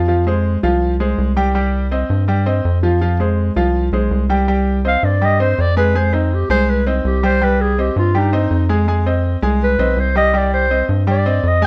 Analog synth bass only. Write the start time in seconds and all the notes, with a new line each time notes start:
Already playing: F2
0.63 C2
1.18 C2
2.10 G2
2.65 F2
3.56 C2
3.92 B1
4.11 C2
5.03 G2
5.58 F2
6.49 C2
7.05 C2
7.96 G2
8.51 F2
9.42 C2
9.78 B1
9.96 C2
10.89 G2
11.43 F2